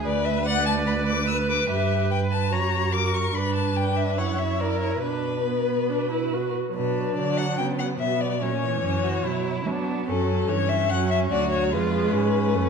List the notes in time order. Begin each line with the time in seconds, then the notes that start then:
0.04 D2 B4 D5
0.25 E5
0.46 D5 F#5
0.66 A5
0.87 B5
1.07 D6
1.28 B4 E6
1.49 D6
1.69 G2 G4 E5
2.10 B4 G5
2.32 A5
2.52 F#2 F#4 C#5 A#5
2.93 A#4 D6
3.14 C#6
3.34 G2 D4 B4 B5
3.56 A5
3.76 D4 G5
3.97 E5
4.18 F#2 E4 C#5 F#5
4.38 E5
4.60 A#4 D5
4.82 C#5
5.02 B2 D4 B4
5.46 B3
5.89 D4
6.12 E4
6.34 F#4
6.75 B2 F#3 D4 B4
7.17 D3 D5
7.37 F#5
7.58 C#3 B3 G5
7.79 F#5
7.99 B2 B3 E5
8.21 D5
8.41 A#2 F#3 C#4 C#5
8.63 E3
8.83 F#2 C#4
9.03 F#4
9.24 B2 F#3 E4
9.65 F#3 B3 D4
10.07 F#2 F#3 C#4 A4
10.48 G2 E3 C#4 C#5
10.69 E5
10.90 F#2 F#3 F#5
11.11 E5
11.31 D2 F#3 F#4 D5
11.52 C#5
11.72 F2 G#3 F4 B4
12.12 G#2 C#4
12.54 F#2 A3